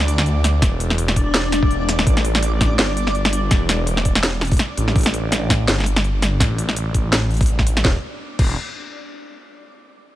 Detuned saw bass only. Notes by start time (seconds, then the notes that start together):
Already playing: D2
0.62 E1
1.71 E1
2.07 A1
2.79 G1
3.51 E1
4.78 A1
4.96 A1
5.68 G1
6.40 A1
7.49 A1
7.85 E1
8.39 E1